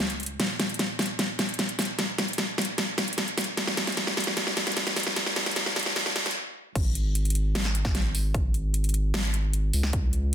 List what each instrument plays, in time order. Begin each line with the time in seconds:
Already playing: sub bass C#2
0.10 closed hi-hat
0.20 closed hi-hat
0.23 closed hi-hat
0.26 closed hi-hat
0.39 sub bass D#1, snare, closed hi-hat
0.60 snare, closed hi-hat
0.69 closed hi-hat
0.74 closed hi-hat
0.79 snare, closed hi-hat
0.99 snare, closed hi-hat
1.02 closed hi-hat
1.06 closed hi-hat
1.19 snare, closed hi-hat
1.39 snare, closed hi-hat
1.49 closed hi-hat
1.54 closed hi-hat
1.59 snare, closed hi-hat
1.69 closed hi-hat
1.79 snare, closed hi-hat, open hi-hat
1.85 closed hi-hat
1.99 snare, closed hi-hat
2.18 snare, closed hi-hat
2.28 closed hi-hat
2.33 closed hi-hat
2.38 snare, closed hi-hat
2.58 snare, closed hi-hat
2.61 closed hi-hat
2.65 closed hi-hat
2.78 snare, closed hi-hat
2.98 snare, closed hi-hat
3.08 closed hi-hat
3.13 closed hi-hat
3.18 snare, closed hi-hat
3.28 closed hi-hat
3.38 snare, closed hi-hat, open hi-hat
3.44 closed hi-hat
3.57 sub bass A#1, snare, closed hi-hat
3.67 snare
3.77 snare, closed hi-hat
3.87 snare, closed hi-hat
3.92 closed hi-hat
3.97 snare, closed hi-hat
4.07 snare
4.17 snare, closed hi-hat
4.20 closed hi-hat
4.24 snare, closed hi-hat
4.37 snare, closed hi-hat
4.47 snare
4.57 snare, closed hi-hat
4.67 snare, closed hi-hat
4.72 closed hi-hat
4.77 snare, closed hi-hat
4.87 snare, closed hi-hat
4.96 snare, closed hi-hat, open hi-hat
5.03 snare, closed hi-hat
5.16 snare, closed hi-hat
5.26 snare
5.36 snare, closed hi-hat
5.46 snare, closed hi-hat
5.51 closed hi-hat
5.56 snare, closed hi-hat
5.66 snare
5.76 snare, closed hi-hat
5.79 closed hi-hat
5.83 snare, closed hi-hat
5.96 snare, closed hi-hat
6.06 snare
6.16 snare, closed hi-hat
6.26 snare, closed hi-hat
6.31 closed hi-hat
6.75 sub bass G#1, kick, closed hi-hat, crash
6.95 closed hi-hat
7.15 closed hi-hat
7.25 closed hi-hat
7.30 closed hi-hat
7.35 closed hi-hat
7.55 snare, closed hi-hat
7.65 snare
7.75 closed hi-hat
7.85 kick, snare
7.95 snare, closed hi-hat
8.15 open hi-hat
8.34 kick, closed hi-hat
8.54 closed hi-hat
8.74 closed hi-hat
8.84 closed hi-hat
8.89 closed hi-hat
8.94 closed hi-hat
9.14 snare, closed hi-hat
9.34 closed hi-hat
9.53 closed hi-hat
9.73 sub bass C#2, open hi-hat
9.83 snare
9.93 kick, closed hi-hat
10.13 closed hi-hat